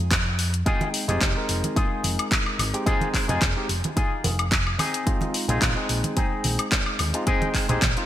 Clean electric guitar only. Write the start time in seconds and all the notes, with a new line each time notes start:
0.66 D#4 F4 G#4
1.08 D#4 F4 G#4
1.36 muted clean electric guitar stroke
1.76 D#4 F4 G#4
2.73 muted clean electric guitar stroke
2.86 D#4 F4 G#4
3.28 D#4 F4 G#4
3.56 muted clean electric guitar stroke
3.96 D#4 F4 G#4
4.78 C4 D#4 G#4
5.48 C4 D#4 G#4
5.76 muted clean electric guitar stroke
6.16 C4 D#4 G#4
7.13 muted clean electric guitar stroke
7.26 C4 D#4 G#4
7.68 C4 D#4 G#4
7.96 muted clean electric guitar stroke